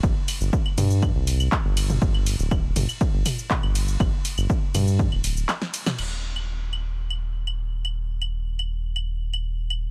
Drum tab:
CC |----------------|----------------|----------------|x---------------|
RD |--x---x---x---x-|--x---x---x---x-|--x---x---x---x-|----------------|
HH |--o---o---o---o-|--o---o---o---o-|--o---o---o---o-|----------------|
SH |x-xxx-xxx-xxx-xx|x-xxx-xxx-xxx-xx|x-xxx-xxx-xxx-xx|----------------|
CL |--x--x--x--x--x-|-x--x--x--x--x--|x--x--x--x--x--x|x--x--x--x--x--x|
CP |------------x---|------------x---|------------x---|----------------|
SD |----------------|----------------|------------oo-o|----------------|
T2 |------o--------o|------o---o-o---|------o--------o|----------------|
BD |o---o---o---o---|o---o---o---o---|o---o---o-------|----------------|

CC |----------------|
RD |----------------|
HH |----------------|
SH |----------------|
CL |--x--x--x--x--x-|
CP |----------------|
SD |----------------|
T2 |----------------|
BD |----------------|